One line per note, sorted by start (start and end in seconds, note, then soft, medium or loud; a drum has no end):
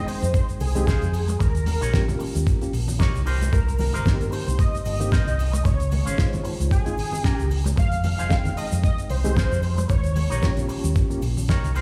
0.00 0.72 G#3 medium
0.00 0.72 C4 medium
0.00 0.72 D#4 medium
0.00 0.72 G5 loud
0.07 0.34 C5 loud
0.07 muted clean electric guitar stroke medium
0.07 open hi-hat loud
0.07 cabasa medium
0.21 0.31 F2 medium
0.21 muted clean electric guitar stroke soft
0.21 closed hi-hat medium
0.21 high conga medium
0.21 cabasa soft
0.21 shaker medium
0.34 0.46 C5 loud
0.34 kick loud
0.34 closed hi-hat medium
0.34 cabasa medium
0.34 shaker medium
0.49 closed hi-hat medium
0.49 cabasa soft
0.49 shaker soft
0.60 0.96 C2 medium
0.60 1.36 G#4 loud
0.60 open hi-hat loud
0.60 cabasa medium
0.75 0.85 G#3 loud
0.75 0.85 C4 medium
0.75 0.85 D#4 medium
0.75 0.86 G4 loud
0.75 closed hi-hat medium
0.75 low conga medium
0.75 cabasa soft
0.75 shaker medium
0.86 1.07 D#4 medium
0.86 1.08 F4 medium
0.86 1.08 G#4 medium
0.86 1.08 C5 medium
0.86 kick loud
0.86 snare loud
0.86 closed hi-hat medium
0.86 cabasa medium
0.86 shaker medium
1.02 1.36 F2 medium
1.02 closed hi-hat medium
1.02 cabasa soft
1.02 shaker soft
1.13 open hi-hat loud
1.13 cabasa medium
1.28 muted clean electric guitar stroke loud
1.28 closed hi-hat medium
1.28 high conga medium
1.28 cabasa soft
1.28 shaker medium
1.39 1.76 D#2 medium
1.39 2.17 A#4 medium
1.39 muted clean electric guitar stroke loud
1.39 kick loud
1.39 closed hi-hat medium
1.39 cabasa medium
1.39 shaker medium
1.54 muted clean electric guitar stroke soft
1.54 closed hi-hat medium
1.54 cabasa soft
1.54 shaker medium
1.66 open hi-hat loud
1.66 high conga medium
1.66 low conga medium
1.66 cabasa medium
1.81 2.16 A#1 medium
1.81 2.00 D#4 loud
1.81 2.01 G4 medium
1.81 2.01 A#4 medium
1.81 2.01 C#5 loud
1.81 closed hi-hat medium
1.81 cabasa soft
1.81 shaker medium
1.93 2.57 A#3 medium
1.93 2.58 C#4 medium
1.93 2.58 F4 medium
1.93 2.58 G4 loud
1.93 kick loud
1.93 snare loud
1.93 closed hi-hat medium
1.93 cabasa medium
1.93 shaker medium
2.08 closed hi-hat medium
2.08 high conga medium
2.08 low conga loud
2.08 cabasa soft
2.08 shaker soft
2.19 muted clean electric guitar stroke medium
2.19 muted fingered electric bass stroke soft
2.19 open hi-hat loud
2.19 cabasa loud
2.34 2.44 D#2 medium
2.34 muted clean electric guitar stroke soft
2.34 closed hi-hat medium
2.34 high conga medium
2.34 cabasa soft
2.34 shaker medium
2.47 kick loud
2.47 closed hi-hat medium
2.47 cabasa medium
2.47 shaker medium
2.61 2.71 A#3 medium
2.61 2.71 C#4 medium
2.61 2.71 F4 medium
2.61 2.72 G4 medium
2.61 closed hi-hat medium
2.61 cabasa soft
2.61 shaker soft
2.73 3.09 A#1 medium
2.73 open hi-hat loud
2.73 cabasa medium
2.88 open hi-hat medium
2.88 low conga loud
2.88 cabasa soft
2.88 shaker medium
2.98 3.20 D#4 medium
2.98 3.20 G4 medium
2.98 3.20 A#4 medium
2.98 3.21 C#5 loud
2.98 kick loud
2.98 snare loud
2.98 closed hi-hat medium
2.98 cabasa medium
2.98 shaker medium
3.14 3.48 C2 medium
3.14 closed hi-hat medium
3.14 cabasa soft
3.14 shaker soft
3.25 3.58 D#4 medium
3.25 3.58 G4 medium
3.25 3.59 A#4 medium
3.25 3.59 C5 loud
3.25 open hi-hat loud
3.25 cabasa loud
3.41 closed hi-hat medium
3.41 high conga loud
3.41 cabasa soft
3.41 shaker medium
3.53 3.89 C2 loud
3.53 3.77 A#4 loud
3.53 kick loud
3.53 closed hi-hat medium
3.53 cabasa medium
3.53 shaker medium
3.66 muted clean electric guitar stroke soft
3.66 closed hi-hat medium
3.66 cabasa soft
3.66 shaker soft
3.78 4.28 A#4 loud
3.78 open hi-hat loud
3.78 high conga medium
3.78 low conga medium
3.78 cabasa medium
3.93 4.28 G1 medium
3.93 4.12 D#4 medium
3.93 4.13 G4 medium
3.93 4.13 A#4 medium
3.93 4.13 C5 loud
3.93 closed hi-hat medium
3.93 cabasa soft
3.93 shaker medium
4.05 4.96 A#3 medium
4.05 4.97 C4 medium
4.05 4.97 D#4 medium
4.05 4.97 G4 loud
4.05 kick loud
4.05 snare loud
4.05 closed hi-hat medium
4.05 cabasa soft
4.05 shaker medium
4.20 closed hi-hat medium
4.20 high conga medium
4.20 low conga loud
4.20 cabasa soft
4.20 shaker soft
4.31 4.61 C5 loud
4.31 muted clean electric guitar stroke medium
4.31 open hi-hat loud
4.31 cabasa loud
4.46 4.56 C2 medium
4.46 muted clean electric guitar stroke soft
4.46 closed hi-hat medium
4.46 high conga medium
4.46 cabasa soft
4.46 shaker medium
4.59 5.67 D#5 loud
4.59 kick loud
4.59 closed hi-hat medium
4.59 cabasa medium
4.59 shaker medium
4.73 closed hi-hat medium
4.73 cabasa soft
4.73 shaker medium
4.85 5.21 G1 medium
4.85 open hi-hat loud
4.85 cabasa medium
5.00 5.10 A#3 loud
5.00 5.10 C4 medium
5.00 5.10 D#4 medium
5.00 5.10 G4 loud
5.00 closed hi-hat medium
5.00 low conga medium
5.00 cabasa soft
5.00 shaker medium
5.11 5.32 D#4 medium
5.11 5.32 G4 medium
5.11 5.33 A#4 medium
5.11 5.33 C5 loud
5.11 kick loud
5.11 snare loud
5.11 closed hi-hat medium
5.11 cabasa medium
5.11 shaker medium
5.27 5.61 C2 medium
5.27 closed hi-hat medium
5.27 cabasa soft
5.27 shaker soft
5.39 open hi-hat loud
5.39 cabasa medium
5.52 muted clean electric guitar stroke loud
5.52 closed hi-hat medium
5.52 high conga loud
5.52 cabasa soft
5.52 shaker medium
5.64 6.01 C#2 loud
5.64 6.45 C#5 loud
5.64 muted clean electric guitar stroke loud
5.64 kick loud
5.64 closed hi-hat medium
5.64 cabasa medium
5.64 shaker medium
5.78 muted clean electric guitar stroke soft
5.78 closed hi-hat medium
5.78 cabasa soft
5.78 shaker soft
5.92 open hi-hat loud
5.92 high conga medium
5.92 low conga medium
5.92 cabasa medium
6.05 6.40 G#1 medium
6.05 6.25 C#4 medium
6.05 6.25 F4 medium
6.05 6.25 G#4 medium
6.05 6.26 C5 medium
6.05 closed hi-hat medium
6.05 cabasa soft
6.05 shaker medium
6.17 6.82 G#3 medium
6.17 6.83 D#4 medium
6.17 6.83 F4 loud
6.17 6.82 C5 medium
6.17 kick loud
6.17 snare loud
6.17 closed hi-hat medium
6.17 cabasa medium
6.17 shaker medium
6.33 closed hi-hat medium
6.33 high conga medium
6.33 low conga loud
6.33 cabasa soft
6.33 shaker medium
6.44 muted clean electric guitar stroke medium
6.44 muted fingered electric bass stroke soft
6.44 open hi-hat loud
6.44 cabasa medium
6.58 6.69 C#2 medium
6.58 muted clean electric guitar stroke soft
6.58 closed hi-hat medium
6.58 high conga medium
6.58 cabasa soft
6.58 shaker medium
6.71 7.24 G#4 loud
6.71 kick loud
6.71 closed hi-hat medium
6.71 cabasa medium
6.71 shaker medium
6.85 6.95 G#3 medium
6.85 6.96 C4 medium
6.85 6.96 D#4 medium
6.85 6.96 F4 medium
6.85 closed hi-hat medium
6.85 cabasa soft
6.85 shaker medium
6.97 7.34 G#1 medium
6.97 open hi-hat loud
6.97 cabasa medium
7.12 open hi-hat medium
7.12 low conga medium
7.12 cabasa soft
7.12 shaker medium
7.23 7.44 C#4 medium
7.23 7.45 F4 medium
7.23 7.47 G4 loud
7.23 7.45 G#4 medium
7.23 7.45 A#4 medium
7.23 kick loud
7.23 snare loud
7.23 closed hi-hat medium
7.23 cabasa soft
7.23 shaker medium
7.38 7.73 C#2 medium
7.38 closed hi-hat medium
7.38 cabasa soft
7.38 shaker soft
7.51 open hi-hat loud
7.51 cabasa medium
7.64 muted clean electric guitar stroke loud
7.64 closed hi-hat medium
7.64 high conga loud
7.64 cabasa soft
7.64 shaker medium
7.76 8.13 F2 loud
7.76 8.03 F5 loud
7.76 muted clean electric guitar stroke loud
7.76 kick loud
7.76 closed hi-hat medium
7.76 cabasa medium
7.76 shaker medium
7.91 muted clean electric guitar stroke soft
7.91 closed hi-hat medium
7.91 cabasa soft
7.91 shaker medium
8.04 8.54 F5 loud
8.04 open hi-hat loud
8.04 high conga medium
8.04 low conga medium
8.04 cabasa medium
8.18 8.53 F1 medium
8.18 8.38 D#4 medium
8.18 8.38 F4 medium
8.18 8.38 G#4 medium
8.18 8.38 C5 loud
8.18 closed hi-hat medium
8.18 cabasa soft
8.18 shaker medium
8.30 9.21 G#3 medium
8.30 9.21 C4 medium
8.30 9.22 D#4 medium
8.30 9.22 G5 loud
8.30 kick loud
8.30 snare loud
8.30 closed hi-hat medium
8.30 cabasa soft
8.30 shaker medium
8.45 closed hi-hat medium
8.45 high conga medium
8.45 low conga medium
8.45 cabasa soft
8.45 shaker medium
8.57 8.69 D#5 loud
8.57 muted clean electric guitar stroke medium
8.57 open hi-hat loud
8.57 cabasa medium
8.71 8.81 F2 medium
8.71 muted clean electric guitar stroke soft
8.71 closed hi-hat medium
8.71 high conga medium
8.71 cabasa soft
8.71 shaker medium
8.83 8.96 D#5 loud
8.83 kick loud
8.83 closed hi-hat medium
8.83 cabasa medium
8.83 shaker medium
8.98 closed hi-hat medium
8.98 cabasa soft
8.98 shaker medium
9.09 9.46 C2 medium
9.09 9.86 C5 loud
9.09 open hi-hat loud
9.09 cabasa medium
9.24 9.34 G#3 loud
9.24 9.35 C4 medium
9.24 9.35 D#4 medium
9.24 9.35 G4 loud
9.24 closed hi-hat medium
9.24 low conga medium
9.24 cabasa soft
9.24 shaker medium
9.36 9.57 D#4 medium
9.36 9.57 F4 medium
9.36 9.57 G#4 medium
9.36 9.58 C5 medium
9.36 kick loud
9.36 snare loud
9.36 closed hi-hat medium
9.36 cabasa soft
9.36 shaker medium
9.51 9.85 F2 medium
9.51 closed hi-hat medium
9.51 cabasa soft
9.51 shaker medium
9.62 open hi-hat medium
9.62 cabasa medium
9.77 muted clean electric guitar stroke loud
9.77 closed hi-hat soft
9.77 high conga loud
9.77 cabasa soft
9.77 shaker medium
9.88 10.26 D#2 loud
9.88 10.65 C#5 medium
9.88 muted clean electric guitar stroke loud
9.88 kick loud
9.88 closed hi-hat medium
9.88 cabasa medium
9.88 shaker medium
10.03 muted clean electric guitar stroke soft
10.03 closed hi-hat medium
10.03 cabasa soft
10.03 shaker medium
10.16 open hi-hat loud
10.16 high conga medium
10.16 low conga medium
10.16 cabasa medium
10.30 10.65 A#1 medium
10.30 10.50 D#4 medium
10.30 10.50 G4 medium
10.30 10.50 A#4 medium
10.30 10.51 C#5 loud
10.30 closed hi-hat medium
10.30 cabasa soft
10.30 shaker medium
10.42 11.07 A#3 medium
10.42 11.07 C#4 medium
10.42 11.07 F4 medium
10.42 11.08 G4 loud
10.42 kick loud
10.42 snare loud
10.42 closed hi-hat medium
10.42 cabasa medium
10.42 shaker medium
10.57 closed hi-hat medium
10.57 high conga medium
10.57 low conga medium
10.57 cabasa soft
10.57 shaker medium
10.69 muted clean electric guitar stroke medium
10.69 muted fingered electric bass stroke soft
10.69 open hi-hat loud
10.69 cabasa medium
10.83 10.93 D#2 medium
10.83 muted clean electric guitar stroke soft
10.83 closed hi-hat soft
10.83 high conga medium
10.83 cabasa soft
10.83 shaker medium
10.95 kick loud
10.95 closed hi-hat medium
10.95 cabasa medium
10.95 shaker medium
11.10 11.20 A#3 medium
11.10 11.20 C#4 medium
11.10 11.20 F4 medium
11.10 11.20 G4 medium
11.10 closed hi-hat medium
11.10 cabasa soft
11.10 shaker medium
11.22 11.58 A#1 medium
11.22 open hi-hat loud
11.22 cabasa medium
11.37 open hi-hat medium
11.37 low conga medium
11.37 cabasa soft
11.37 shaker medium
11.48 11.69 D#4 medium
11.48 11.70 G4 medium
11.48 11.70 A#4 medium
11.48 11.70 C#5 medium
11.48 kick loud
11.48 snare loud
11.48 closed hi-hat medium
11.48 cabasa soft
11.48 shaker medium
11.64 11.81 C2 medium
11.64 closed hi-hat medium
11.64 cabasa soft
11.64 shaker medium
11.74 11.81 D#4 medium
11.74 11.81 G4 medium
11.74 11.81 A#4 medium
11.74 11.81 C5 loud
11.74 open hi-hat medium
11.74 cabasa medium